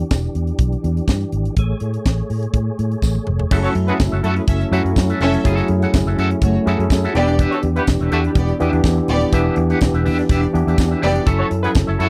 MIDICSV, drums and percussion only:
0, 0, Header, 1, 2, 480
1, 0, Start_track
1, 0, Tempo, 484653
1, 1555, Time_signature, 4, 2, 24, 8
1, 11974, End_track
2, 0, Start_track
2, 0, Title_t, "Drums"
2, 106, Note_on_c, 9, 54, 92
2, 108, Note_on_c, 9, 36, 110
2, 111, Note_on_c, 9, 38, 102
2, 206, Note_off_c, 9, 54, 0
2, 207, Note_off_c, 9, 36, 0
2, 210, Note_off_c, 9, 38, 0
2, 347, Note_on_c, 9, 42, 56
2, 446, Note_off_c, 9, 42, 0
2, 469, Note_on_c, 9, 42, 37
2, 568, Note_off_c, 9, 42, 0
2, 580, Note_on_c, 9, 42, 83
2, 582, Note_on_c, 9, 36, 105
2, 679, Note_off_c, 9, 42, 0
2, 681, Note_off_c, 9, 36, 0
2, 718, Note_on_c, 9, 42, 28
2, 817, Note_off_c, 9, 42, 0
2, 834, Note_on_c, 9, 42, 57
2, 933, Note_off_c, 9, 42, 0
2, 962, Note_on_c, 9, 42, 38
2, 1061, Note_off_c, 9, 42, 0
2, 1067, Note_on_c, 9, 36, 98
2, 1075, Note_on_c, 9, 54, 93
2, 1080, Note_on_c, 9, 38, 93
2, 1166, Note_off_c, 9, 36, 0
2, 1175, Note_off_c, 9, 54, 0
2, 1179, Note_off_c, 9, 38, 0
2, 1196, Note_on_c, 9, 42, 32
2, 1295, Note_off_c, 9, 42, 0
2, 1311, Note_on_c, 9, 42, 59
2, 1410, Note_off_c, 9, 42, 0
2, 1440, Note_on_c, 9, 42, 46
2, 1539, Note_off_c, 9, 42, 0
2, 1550, Note_on_c, 9, 42, 84
2, 1551, Note_on_c, 9, 36, 100
2, 1649, Note_off_c, 9, 42, 0
2, 1651, Note_off_c, 9, 36, 0
2, 1785, Note_on_c, 9, 42, 62
2, 1884, Note_off_c, 9, 42, 0
2, 1919, Note_on_c, 9, 42, 49
2, 2018, Note_off_c, 9, 42, 0
2, 2036, Note_on_c, 9, 36, 93
2, 2038, Note_on_c, 9, 54, 90
2, 2040, Note_on_c, 9, 38, 99
2, 2135, Note_off_c, 9, 36, 0
2, 2137, Note_off_c, 9, 54, 0
2, 2139, Note_off_c, 9, 38, 0
2, 2278, Note_on_c, 9, 46, 62
2, 2377, Note_off_c, 9, 46, 0
2, 2403, Note_on_c, 9, 42, 40
2, 2502, Note_off_c, 9, 42, 0
2, 2512, Note_on_c, 9, 36, 106
2, 2513, Note_on_c, 9, 42, 80
2, 2611, Note_off_c, 9, 36, 0
2, 2612, Note_off_c, 9, 42, 0
2, 2763, Note_on_c, 9, 42, 60
2, 2862, Note_off_c, 9, 42, 0
2, 2888, Note_on_c, 9, 42, 33
2, 2987, Note_off_c, 9, 42, 0
2, 2994, Note_on_c, 9, 36, 97
2, 3004, Note_on_c, 9, 38, 42
2, 3005, Note_on_c, 9, 54, 101
2, 3093, Note_off_c, 9, 36, 0
2, 3103, Note_off_c, 9, 38, 0
2, 3104, Note_off_c, 9, 54, 0
2, 3120, Note_on_c, 9, 48, 63
2, 3219, Note_off_c, 9, 48, 0
2, 3236, Note_on_c, 9, 45, 79
2, 3335, Note_off_c, 9, 45, 0
2, 3362, Note_on_c, 9, 43, 92
2, 3461, Note_off_c, 9, 43, 0
2, 3477, Note_on_c, 9, 49, 109
2, 3478, Note_on_c, 9, 36, 117
2, 3576, Note_off_c, 9, 49, 0
2, 3577, Note_off_c, 9, 36, 0
2, 3608, Note_on_c, 9, 42, 39
2, 3707, Note_off_c, 9, 42, 0
2, 3715, Note_on_c, 9, 42, 83
2, 3814, Note_off_c, 9, 42, 0
2, 3844, Note_on_c, 9, 42, 49
2, 3943, Note_off_c, 9, 42, 0
2, 3960, Note_on_c, 9, 36, 114
2, 3962, Note_on_c, 9, 38, 122
2, 3963, Note_on_c, 9, 54, 94
2, 4059, Note_off_c, 9, 36, 0
2, 4061, Note_off_c, 9, 38, 0
2, 4062, Note_off_c, 9, 54, 0
2, 4198, Note_on_c, 9, 42, 70
2, 4297, Note_off_c, 9, 42, 0
2, 4322, Note_on_c, 9, 42, 43
2, 4421, Note_off_c, 9, 42, 0
2, 4434, Note_on_c, 9, 36, 127
2, 4434, Note_on_c, 9, 42, 93
2, 4533, Note_off_c, 9, 36, 0
2, 4533, Note_off_c, 9, 42, 0
2, 4568, Note_on_c, 9, 42, 38
2, 4667, Note_off_c, 9, 42, 0
2, 4684, Note_on_c, 9, 42, 70
2, 4784, Note_off_c, 9, 42, 0
2, 4812, Note_on_c, 9, 42, 45
2, 4911, Note_off_c, 9, 42, 0
2, 4915, Note_on_c, 9, 36, 100
2, 4923, Note_on_c, 9, 54, 101
2, 4932, Note_on_c, 9, 38, 98
2, 5014, Note_off_c, 9, 36, 0
2, 5022, Note_off_c, 9, 54, 0
2, 5031, Note_off_c, 9, 38, 0
2, 5047, Note_on_c, 9, 42, 42
2, 5147, Note_off_c, 9, 42, 0
2, 5157, Note_on_c, 9, 42, 71
2, 5256, Note_off_c, 9, 42, 0
2, 5285, Note_on_c, 9, 42, 56
2, 5384, Note_off_c, 9, 42, 0
2, 5398, Note_on_c, 9, 36, 116
2, 5398, Note_on_c, 9, 42, 87
2, 5497, Note_off_c, 9, 36, 0
2, 5497, Note_off_c, 9, 42, 0
2, 5525, Note_on_c, 9, 42, 41
2, 5624, Note_off_c, 9, 42, 0
2, 5628, Note_on_c, 9, 42, 72
2, 5727, Note_off_c, 9, 42, 0
2, 5767, Note_on_c, 9, 42, 56
2, 5867, Note_off_c, 9, 42, 0
2, 5881, Note_on_c, 9, 36, 118
2, 5881, Note_on_c, 9, 54, 101
2, 5889, Note_on_c, 9, 38, 115
2, 5980, Note_off_c, 9, 36, 0
2, 5980, Note_off_c, 9, 54, 0
2, 5988, Note_off_c, 9, 38, 0
2, 6005, Note_on_c, 9, 42, 35
2, 6104, Note_off_c, 9, 42, 0
2, 6126, Note_on_c, 9, 42, 66
2, 6225, Note_off_c, 9, 42, 0
2, 6247, Note_on_c, 9, 42, 47
2, 6346, Note_off_c, 9, 42, 0
2, 6355, Note_on_c, 9, 36, 121
2, 6357, Note_on_c, 9, 42, 99
2, 6454, Note_off_c, 9, 36, 0
2, 6456, Note_off_c, 9, 42, 0
2, 6608, Note_on_c, 9, 42, 72
2, 6707, Note_off_c, 9, 42, 0
2, 6736, Note_on_c, 9, 42, 47
2, 6835, Note_off_c, 9, 42, 0
2, 6836, Note_on_c, 9, 36, 109
2, 6845, Note_on_c, 9, 54, 117
2, 6854, Note_on_c, 9, 38, 108
2, 6935, Note_off_c, 9, 36, 0
2, 6944, Note_off_c, 9, 54, 0
2, 6953, Note_off_c, 9, 38, 0
2, 6971, Note_on_c, 9, 42, 40
2, 7070, Note_off_c, 9, 42, 0
2, 7083, Note_on_c, 9, 42, 78
2, 7182, Note_off_c, 9, 42, 0
2, 7210, Note_on_c, 9, 42, 53
2, 7309, Note_off_c, 9, 42, 0
2, 7319, Note_on_c, 9, 36, 119
2, 7320, Note_on_c, 9, 42, 97
2, 7418, Note_off_c, 9, 36, 0
2, 7419, Note_off_c, 9, 42, 0
2, 7452, Note_on_c, 9, 42, 42
2, 7551, Note_off_c, 9, 42, 0
2, 7554, Note_on_c, 9, 42, 80
2, 7654, Note_off_c, 9, 42, 0
2, 7688, Note_on_c, 9, 42, 51
2, 7787, Note_off_c, 9, 42, 0
2, 7797, Note_on_c, 9, 54, 103
2, 7801, Note_on_c, 9, 36, 109
2, 7806, Note_on_c, 9, 38, 119
2, 7896, Note_off_c, 9, 54, 0
2, 7900, Note_off_c, 9, 36, 0
2, 7905, Note_off_c, 9, 38, 0
2, 7924, Note_on_c, 9, 42, 39
2, 8024, Note_off_c, 9, 42, 0
2, 8039, Note_on_c, 9, 42, 66
2, 8139, Note_off_c, 9, 42, 0
2, 8165, Note_on_c, 9, 42, 44
2, 8264, Note_off_c, 9, 42, 0
2, 8274, Note_on_c, 9, 36, 126
2, 8274, Note_on_c, 9, 42, 81
2, 8373, Note_off_c, 9, 36, 0
2, 8373, Note_off_c, 9, 42, 0
2, 8406, Note_on_c, 9, 42, 33
2, 8505, Note_off_c, 9, 42, 0
2, 8521, Note_on_c, 9, 42, 64
2, 8620, Note_off_c, 9, 42, 0
2, 8646, Note_on_c, 9, 42, 44
2, 8745, Note_off_c, 9, 42, 0
2, 8753, Note_on_c, 9, 36, 117
2, 8765, Note_on_c, 9, 54, 97
2, 8767, Note_on_c, 9, 38, 99
2, 8852, Note_off_c, 9, 36, 0
2, 8864, Note_off_c, 9, 54, 0
2, 8866, Note_off_c, 9, 38, 0
2, 8995, Note_on_c, 9, 42, 67
2, 9094, Note_off_c, 9, 42, 0
2, 9121, Note_on_c, 9, 42, 51
2, 9220, Note_off_c, 9, 42, 0
2, 9235, Note_on_c, 9, 42, 95
2, 9236, Note_on_c, 9, 36, 121
2, 9334, Note_off_c, 9, 42, 0
2, 9335, Note_off_c, 9, 36, 0
2, 9469, Note_on_c, 9, 42, 75
2, 9568, Note_off_c, 9, 42, 0
2, 9607, Note_on_c, 9, 42, 53
2, 9706, Note_off_c, 9, 42, 0
2, 9713, Note_on_c, 9, 54, 104
2, 9721, Note_on_c, 9, 36, 115
2, 9730, Note_on_c, 9, 38, 114
2, 9812, Note_off_c, 9, 54, 0
2, 9820, Note_off_c, 9, 36, 0
2, 9829, Note_off_c, 9, 38, 0
2, 9849, Note_on_c, 9, 42, 34
2, 9948, Note_off_c, 9, 42, 0
2, 9964, Note_on_c, 9, 46, 66
2, 10063, Note_off_c, 9, 46, 0
2, 10091, Note_on_c, 9, 42, 45
2, 10096, Note_on_c, 9, 38, 33
2, 10190, Note_off_c, 9, 42, 0
2, 10195, Note_off_c, 9, 38, 0
2, 10195, Note_on_c, 9, 36, 121
2, 10200, Note_on_c, 9, 42, 91
2, 10294, Note_off_c, 9, 36, 0
2, 10299, Note_off_c, 9, 42, 0
2, 10330, Note_on_c, 9, 42, 36
2, 10429, Note_off_c, 9, 42, 0
2, 10452, Note_on_c, 9, 42, 69
2, 10551, Note_off_c, 9, 42, 0
2, 10579, Note_on_c, 9, 42, 43
2, 10677, Note_on_c, 9, 36, 118
2, 10677, Note_on_c, 9, 54, 116
2, 10678, Note_off_c, 9, 42, 0
2, 10698, Note_on_c, 9, 38, 90
2, 10776, Note_off_c, 9, 36, 0
2, 10776, Note_off_c, 9, 54, 0
2, 10797, Note_off_c, 9, 38, 0
2, 10925, Note_on_c, 9, 46, 64
2, 11024, Note_off_c, 9, 46, 0
2, 11050, Note_on_c, 9, 42, 51
2, 11149, Note_off_c, 9, 42, 0
2, 11158, Note_on_c, 9, 36, 126
2, 11162, Note_on_c, 9, 42, 89
2, 11257, Note_off_c, 9, 36, 0
2, 11261, Note_off_c, 9, 42, 0
2, 11399, Note_on_c, 9, 42, 79
2, 11498, Note_off_c, 9, 42, 0
2, 11530, Note_on_c, 9, 42, 51
2, 11629, Note_off_c, 9, 42, 0
2, 11634, Note_on_c, 9, 54, 103
2, 11640, Note_on_c, 9, 36, 123
2, 11651, Note_on_c, 9, 38, 117
2, 11733, Note_off_c, 9, 54, 0
2, 11739, Note_off_c, 9, 36, 0
2, 11750, Note_off_c, 9, 38, 0
2, 11885, Note_on_c, 9, 42, 67
2, 11974, Note_off_c, 9, 42, 0
2, 11974, End_track
0, 0, End_of_file